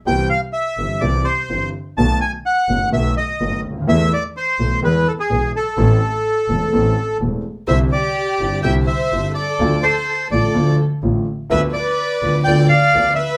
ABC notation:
X:1
M:4/4
L:1/16
Q:1/4=126
K:C
V:1 name="Bandoneon"
g2 f2 e4 d2 c4 z2 | a2 ^g2 ^f4 e2 ^d4 z2 | e2 d2 c4 B2 A ^G3 A2- | A12 z4 |
e2 d6 g2 e4 d2- | d2 c4 d4 z6 | e2 d6 g2 f4 e2 |]
V:2 name="Violin section"
z16 | z16 | z16 | z16 |
c2 G6 e2 c4 A2- | A2 A4 A4 z6 | B2 B6 d2 d4 B2 |]
V:3 name="Grand piano" clef=bass
[C,,C,E,G,CG]2 z4 [G,,,G,,E,G,CG]2 [C,,C,E,G,CG]2 z2 [G,,,G,,E,G,CG]2 z2 | [B,,,B,,^D,A,B,^F]2 z4 [^F,,,^F,,D,A,B,F]2 [B,,,B,,D,A,B,F]2 z2 [F,,,F,,D,A,B,F]2 z/2 ^C,,/2 =D,,/2 ^D,,/2 | [E,,E,A,B,A]2 z4 [B,,,B,,E,A,B,A]2 [E,,E,^G,B,^G]2 z2 [B,,,B,,E,G,B,G]2 z2 | [A,,,A,,E,A,CA]2 z4 [E,,,E,,E,A,CA]2 [A,,,A,,E,A,CA]2 z2 [E,,,E,,E,A,CA]2 z2 |
[C,,C,D,G,CE]2 z4 [G,,,G,,D,G,CE]2 [C,,C,D,G,CE]2 z2 [G,,,G,,D,G,CE]2 z2 | [D,,D,F,A,F]2 z4 [A,,,A,,D,F,A,F]2 [D,,D,F,A,F]2 z2 [A,,,A,,D,F,A,F]2 z2 | [D,,D,F,B,F]2 z4 [D,,D,F,B,F]2 [D,,D,F,B,F]2 z2 [D,,D,F,B,F]2 z2 |]
V:4 name="Double bass" clef=bass
C,,2 z4 G,,,2 C,,2 z2 G,,,2 z2 | B,,,2 z4 ^F,,,2 B,,,2 z2 F,,,2 D,,2 | E,,2 z4 B,,,2 E,,2 z2 B,,,2 z2 | A,,,2 z4 E,,,2 A,,,2 z2 E,,,2 z2 |
C,,2 z4 G,,,2 C,,2 z2 G,,,2 z2 | D,,2 z4 A,,,2 D,,2 z2 A,,,2 z2 | D,,2 z4 D,,2 D,,2 z2 D,,2 z2 |]